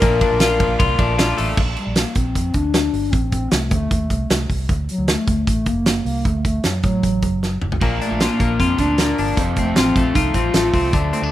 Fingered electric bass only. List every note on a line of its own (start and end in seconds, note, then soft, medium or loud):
0.02 0.19 A#1 loud
0.32 0.78 A#1 medium
0.80 0.96 C2 loud
0.99 1.32 A#1 medium
1.39 1.55 A1 medium
1.58 1.74 A#1 loud
1.87 2.03 A#1 medium
2.16 2.32 A#1 medium
2.36 2.52 F2 medium
2.55 2.88 D2 loud
2.93 3.10 G1 medium
3.13 3.46 A1 medium
3.52 3.69 C2 medium
3.71 3.88 D2 medium
3.92 4.08 D#2 medium
4.10 4.27 C2 loud
4.30 4.47 C2 medium
4.49 4.66 C2 medium
4.70 4.86 D2 loud
4.98 5.15 D2 medium
5.28 5.44 D2 medium
5.47 5.64 A1 medium
5.67 6.00 F#1 medium
6.05 6.22 C2 medium
6.25 6.58 D2 medium
6.65 6.81 F#2 medium
6.84 7.00 A2 medium
7.04 7.20 A1 medium
7.23 7.56 F#1 loud
7.63 7.79 F#1 medium
7.82 7.98 A#1 medium
8.10 8.27 A#1 medium
8.40 8.57 A#1 medium
8.60 8.76 F2 medium
8.79 9.12 D2 medium
9.19 9.35 G1 loud
9.37 9.71 F1 medium
9.77 9.93 A1 medium
9.96 10.12 A#1 medium
10.15 10.32 C2 medium
10.35 10.51 A1 medium
10.54 10.71 A1 medium
10.74 10.90 C2 medium
10.94 11.10 D2 loud
11.22 11.32 D2 medium